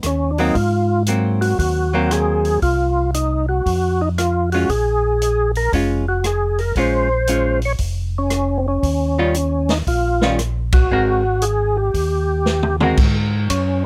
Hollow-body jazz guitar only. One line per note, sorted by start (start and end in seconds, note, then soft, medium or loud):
0.39 0.54 F#3 medium
0.39 0.54 A#3 medium
0.39 0.55 C4 medium
1.08 1.86 F#3 soft
1.08 1.87 A#3 soft
1.08 1.87 C4 medium
1.94 2.59 F#3 medium
1.94 2.60 A#3 medium
1.94 2.60 C4 medium
4.54 4.69 G#3 soft
4.54 4.69 C#4 soft
4.54 4.69 F4 medium
5.73 6.04 G#3 medium
5.73 6.04 C#4 medium
5.73 6.05 F4 medium
6.77 7.07 G#3 medium
6.77 7.08 C#4 medium
6.77 7.08 F4 medium
7.28 7.59 G#3 soft
7.28 7.59 C#4 medium
7.28 7.59 F4 medium
9.18 9.34 D#3 medium
9.18 9.34 G3 medium
9.18 9.34 C#4 medium
9.18 9.34 F4 medium
10.22 10.38 D#3 medium
10.22 10.38 G3 medium
10.22 10.38 C#4 medium
10.22 10.38 F4 medium
10.91 11.22 G#3 medium
10.91 11.22 C4 soft
10.91 11.23 F#4 medium
10.91 11.23 A#4 medium
12.82 12.97 G#3 medium
12.82 12.97 C4 medium
12.82 12.97 F#4 medium
12.82 12.97 A#4 medium